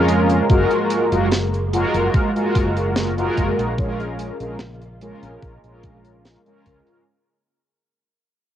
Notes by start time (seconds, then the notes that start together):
Already playing: F2 C#3 G#3 A#3 C#4 F4 A#4
0.08 closed hi-hat
0.29 closed hi-hat
0.49 F#1 G#3 F4 F#4 A#4, kick, closed hi-hat
0.71 closed hi-hat
0.90 closed hi-hat
1.11 F#1 G#3 F4 F#4 A#4, closed hi-hat
1.31 snare, closed hi-hat
1.54 closed hi-hat
1.72 G#3 F4 F#4 A#4, closed hi-hat
1.94 F#1, closed hi-hat
2.14 kick, closed hi-hat
2.35 G#3 F4 F#4 A#4, closed hi-hat
2.55 F#1, kick, closed hi-hat
2.76 closed hi-hat
2.96 snare, closed hi-hat
3.17 G#3 F4 F#4 A#4, closed hi-hat
3.37 F#1, kick, closed hi-hat
3.58 A#1, closed hi-hat
3.77 C#3 G#3 A#3 C#4 F4 A#4, kick, closed hi-hat
4.00 closed hi-hat
4.19 closed hi-hat
4.40 A#1 G#3 C#4 F4 A#4, closed hi-hat
4.59 snare, closed hi-hat
4.82 closed hi-hat
5.01 G#3 C#4 F4 A#4, closed hi-hat
5.23 A#1, closed hi-hat
5.43 A#1, kick, closed hi-hat
5.63 A#1 G#3 C#4 F4 A#4, closed hi-hat
5.83 kick, closed hi-hat
6.05 closed hi-hat
6.25 snare, closed hi-hat
6.45 G#3 C#4 F4 A#4, closed hi-hat
6.66 C#2, kick, closed hi-hat
6.87 closed hi-hat